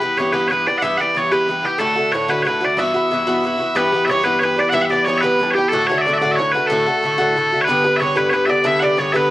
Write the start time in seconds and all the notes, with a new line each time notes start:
Already playing: B4
0.02 E3 B3 G4
0.17 G2 E3 B3 G4 C#5
0.33 G2 E3 B3 G4 B4
0.48 G2 E3 B4 C#5
0.52 B3 G4
0.66 E3 B3 G4 D5
0.78 F#5
0.82 G2 E3 B3 G4 E5
0.97 G4 D5 F#5
1.01 E3 B3
1.15 G2 E3 B3 G4 C#5
1.32 G2 E3 B3 G4 B4
1.48 G2 E3 B3 G4
1.62 E3 B3 G4
1.78 A2 D3 A3 F#4 A4
1.95 D3 A3 F#4
2.12 A2 D3 A3 F#4 C#5
2.28 A2 D3 A3 F#4 B4
2.43 A2 D3 C#5
2.47 A3 F#4 B4
2.61 D3 A3 F#4 D5
2.77 G2 E3 B3 F#4 E5
2.94 E3 B3 F#4
3.11 G2 E3 B3 F#4
3.27 G2 E3 B3 F#4
3.44 G2 E3 B3 F#4
3.58 E3 B3 F#4
3.75 G2 E3 B3 G4 B4
3.92 E3 B3 G4
4.05 G2 C#5 E5
4.09 E3 B3 G4 C#5
4.23 G2 E3 B3 G4 B4
4.39 G2 E3 B3 B4 C#5
4.44 G4 B4
4.56 E3 B3 G4 D5
4.69 G2 E3 E5 F#5
4.74 B3 G4 E5
4.81 E5 F#5
4.90 E3 B3 G4 D5
5.04 G2 E3 B3 C#5
5.09 G4
5.18 B4 E5
5.23 G2 E3 B3 G4 B4
5.39 G2 E3 B3 G4 A4
5.51 G4 C#5
5.56 E3 B3 G4
5.68 A2 A4
5.73 D3 A3 F#4 A4
5.87 F#4 C#5
5.91 D3 A3 C#5
5.98 D5 E5
6.06 A2 D3 A3 F#4 D5
6.13 E5
6.18 F#4 D5
6.22 A2 D3 A3
6.31 E5
6.35 A2 D3 C#5
6.40 A3 F#4 C#5
6.52 A3 F#4 B4
6.57 D3
6.67 A2 D3 A4
6.71 A3 F#4 A4
6.86 D3 A3 F#4
7.03 A2 D3 A3 F#4
7.18 A2 D3 A3 F#4
7.36 A2 D3 A3 F#4
7.52 D3 A3 F#4
7.61 B4 C#5
7.67 G2 D3 B3 G4 B4
7.84 D3 B3 G4 B4
7.96 G2 C#5 E5
8.00 D3 B3 G4 C#5
8.15 G2 D3 B3 G4 B4
8.30 G2 D3 B3 B4 C#5
8.34 G4 B4
8.46 B3 G4 D5 E5
8.50 D3 D5
8.64 G2 D3 B3 G4 E5
8.79 G4 D5 F#5
8.84 D3 B3 D5
8.97 G2 D3 B3 G4 C#5
9.12 D3 B3 G4 B4 E5
9.17 G2